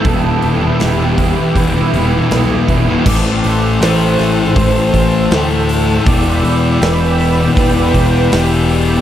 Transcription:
<<
  \new Staff \with { instrumentName = "Analog synth pad" } { \time 4/4 \key e \minor \tempo 4 = 80 << { <e'' d'''>1 | <g'' e'''>1~ | <g'' e'''>1 | } \\ { <b' g''>1 | <c'' a''>1 | <d'' b''>1 | } >> }
  \new Staff \with { instrumentName = "Clean electric guitar" } { \time 4/4 \key e \minor a'4 g'4 b'4 b'4 | d''4 c''4 c''4 a'4 | d''4 b'4 b'4 g'4 | }
  \new Staff \with { instrumentName = "Overdriven electric guitar" } { \time 4/4 \key e \minor <e g b e'>8 <e g b e'>8 <e g b e'>8 <e g b e'>8. <g b e'>16 <e g b e'>8 <e g b e'>8 <e g b e'>16 <g b e'>16 | r1 | r1 | }
  \new Staff \with { instrumentName = "Distorted electric guitar" } { \clef bass \time 4/4 \key e \minor <e, b, e>8. <b, e>16 <e, b, e>8 <e, b, e>16 <b, e>16 <e, b, e>16 <b, e>16 <e, b, e>16 <b, e>16 <e, b, e>8 <e, b, e>16 <b, e>16 | <a, e a>4 <a, e a>4 <a, e a>4 <a, e a>4 | <e, b, e>4 <e, b, e>4 <e, b, e>4 <e, b, e>4 | }
  \new Staff \with { instrumentName = "Picked electric bass" } { \clef bass \time 4/4 \key e \minor e,,8 e,,8 e,,4 e,,8 e,,8 b,,8 e,,8 | a,,8 a,,8 a,,8 a,,8 a,,8 a,,8 d,4 | e,,8 e,8 e,,4 e,,8 e,,8 e,,4 | }
  \new DrumStaff \with { instrumentName = "Drums" } \drummode { \time 4/4 <hho bd>8 hho8 <hho sn>8 <hho bd>8 <hho bd>8 hho8 <hho sn>8 <hho bd>8 | <cymc bd>8 hho8 <hho sn>8 <hho sn>8 <hho bd>8 <hho bd>8 <hho sn>8 hho8 | <hho bd>8 hho8 <hho sn>8 hho8 <hho bd>8 <hho bd>8 <hho sn>8 hho8 | }
>>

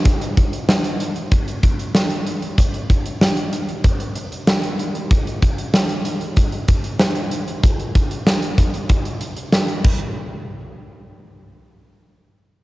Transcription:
\new DrumStaff \with { instrumentName = "Drums" } \drummode { \time 4/4 \tempo 4 = 95 <hh bd>16 hh16 <hh bd>16 hh16 sn16 hh16 hh16 hh16 <hh bd>16 hh16 <hh bd>16 hh16 sn16 hh16 hh16 hh16 | <hh bd>16 hh16 <hh bd>16 hh16 sn16 hh16 hh16 hh16 <hh bd>16 hh16 hh16 hh16 sn16 hh16 hh16 hh16 | <hh bd>16 hh16 <hh bd>16 hh16 sn16 hh16 hh16 hh16 <hh bd>16 hh16 <hh bd>16 hh16 sn16 hh16 hh16 hh16 | <hh bd>16 hh16 <hh bd>16 hh16 <sn tamb>16 hh16 <hh bd>16 hh16 <hh bd>16 hh16 hh16 hh16 <sn tamb>16 hh16 <cymc bd>8 |
r4 r4 r4 r4 | }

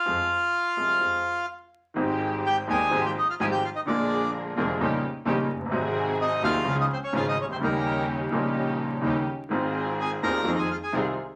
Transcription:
<<
  \new Staff \with { instrumentName = "Bandoneon" } { \time 4/4 \key f \minor \tempo 4 = 127 <f' f''>2. r4 | \key aes \major r4 <g' g''>8 <aes' aes''>8. <g' g''>16 <ees' ees''>16 <f' f''>16 <aes' aes''>16 <g' g''>16 <f' f''>16 <ees' ees''>16 | <d' d''>4 r2. | r4 <ees' ees''>8 <f' f''>8. <ees' ees''>16 <c' c''>16 <des' des''>16 <f' f''>16 <ees' ees''>16 <des' des''>16 <c' c''>16 |
<bes bes'>4 r2. | r4 <aes' aes''>8 <bes' bes''>8. <aes' aes''>16 <f' f''>16 <aes' aes''>8 r8. | }
  \new Staff \with { instrumentName = "String section" } { \time 4/4 \key f \minor r1 | \key aes \major <aes c' g'>4. <aes c' g'>8 <aes f' g'>8 r8 <aes f' g'>8 r8 | <bes d' aes'>4. <bes d' aes'>8 <des' ees' g'>8 r8 <des' ees' g'>8 r8 | <c' ges' aes'>4. <c' ges' aes'>8 <des' f' aes'>8 r8 <des' f' aes'>8 r8 |
<des' ees' g'>4. <des' ees' g'>4. <des' ees' g'>8 r8 | <c' f' aes'>4. <c' f' aes'>8 <ees' f' aes'>8 r8 <ees' f' aes'>8 r8 | }
  \new Staff \with { instrumentName = "Grand piano" } { \clef bass \time 4/4 \key f \minor <f, f aes c' aes'>8 r4 <c, c f aes c' aes'>8 <f, f aes c' aes'>8 r4. | \key aes \major <aes,, aes, ees aes c' g'>4. <ees,, ees, ees aes c' g'>8 <aes,, aes, f aes c' g'>8 r8 <aes,, aes, f aes c' g'>8 r8 | <bes,, bes, d aes bes f'>4. <f,, f, d aes bes f'>8 <bes,, bes, des g bes ees'>8 r8 <bes,, bes, des g bes ees'>8 r32 f,,32 ges,,32 g,,32 | <aes,, aes, c ges aes ees'>4. <ees,, ees, c ges aes ees'>8 <des, des f aes f'>8 r8 <aes,, aes, des f aes f'>8 r32 c,32 des,32 d,32 |
<ees, des ees g bes ees'>4. <bes,, bes, des g bes ees'>4. <ees, des ees g bes ees'>8 r8 | <aes,, aes, ees aes c' f'>4. <ees,, ees, ees aes c' f'>8 <f, ees f aes c' f'>8 r8 <c, c ees aes c' f'>8 r8 | }
  \new Staff \with { instrumentName = "Double bass" } { \clef bass \time 4/4 \key f \minor f,8 r4 c,8 f,8 r4. | \key aes \major aes,,4. ees,8 aes,,8 r8 aes,,8 r8 | bes,,4. f,,8 bes,,8 r8 bes,,8 ges,,8 | aes,,4. ees,8 des,8 r8 aes,,8 des,8 |
ees,4. bes,,4. ees,8 r8 | aes,,4. ees,8 f,8 r8 c,8 r8 | }
>>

